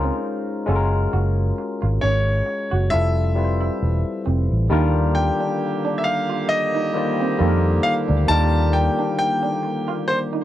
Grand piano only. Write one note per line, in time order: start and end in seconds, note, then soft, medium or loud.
2.01 2.93 C#5 medium
2.90 4.21 E5 loud
5.15 6.00 G5 medium
5.98 6.04 E5 medium
6.04 6.50 F5 medium
6.49 7.87 D#5 medium
7.83 7.93 F5 medium
8.28 8.74 A5 loud
8.73 9.17 G5 medium
9.19 10.10 G5 loud
10.08 10.18 C5 medium